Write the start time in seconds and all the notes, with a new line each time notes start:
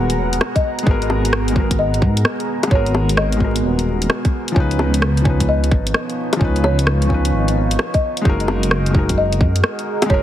Already playing: D#1 G#3 B3 F#4 G#4 A#4 F#5 A#5
0.10 closed hi-hat
0.33 closed hi-hat
0.41 cross-stick, low bongo
0.56 D#5, kick, closed hi-hat
0.79 closed hi-hat
0.83 G#1 G#3 B3, kick
0.88 F#4 A#4
1.02 closed hi-hat
1.10 low bongo
1.25 closed hi-hat
1.33 cross-stick
1.48 G#3, closed hi-hat
1.54 B3 F#4, kick
1.60 A#4
1.71 kick, closed hi-hat
1.79 D#5
1.94 closed hi-hat
2.02 G#2, kick
2.17 closed hi-hat
2.25 cross-stick
2.40 closed hi-hat
2.63 G#3, closed hi-hat, low bongo
2.70 G#1 B3 F#4 C#5, kick
2.75 A#4
2.86 closed hi-hat
2.95 low bongo
3.09 closed hi-hat
3.17 D#5, cross-stick
3.32 closed hi-hat
3.37 G#3 B3, kick
3.42 F#4 A#4
3.56 closed hi-hat
3.63 D#1
3.79 closed hi-hat
4.02 closed hi-hat
4.10 cross-stick, low bongo
4.25 kick, closed hi-hat
4.48 F3, closed hi-hat
4.54 C#2 C#4 D#4 D#5 F5 C#6, kick
4.60 B4
4.71 closed hi-hat
4.79 low bongo
4.94 closed hi-hat
5.02 cross-stick
5.17 closed hi-hat
5.22 F3 C#4, kick
5.27 D#4 B4
5.40 kick, closed hi-hat
5.49 D#5
5.64 closed hi-hat
5.71 G#1, kick
5.87 closed hi-hat
5.94 cross-stick
6.10 closed hi-hat
6.33 F3, closed hi-hat, low bongo
6.39 C#2 C#4 D#4, kick
6.44 B4
6.56 closed hi-hat
6.64 C#5, low bongo
6.79 closed hi-hat
6.87 cross-stick
7.02 closed hi-hat
7.06 F3 C#4
7.10 D#4, kick
7.14 B4
7.25 closed hi-hat
7.33 G#1
7.48 closed hi-hat
7.71 closed hi-hat
7.79 cross-stick, low bongo
7.94 D#5, kick, closed hi-hat
8.17 closed hi-hat
8.21 F#1 G#3 D#4 G#4 D#5 F#5 A#5, kick
8.27 F#4 A#4
8.40 closed hi-hat
8.48 low bongo
8.63 closed hi-hat
8.71 cross-stick
8.86 closed hi-hat
8.91 G#3 D#4
8.95 F#4, kick
8.99 A#4
9.09 kick, closed hi-hat
9.18 D#5
9.32 closed hi-hat
9.41 F#2, kick
9.56 closed hi-hat
9.64 cross-stick
9.79 closed hi-hat
10.02 G#3, closed hi-hat, low bongo
10.08 F#1 D#4 F#4 C#5, kick
10.14 A#4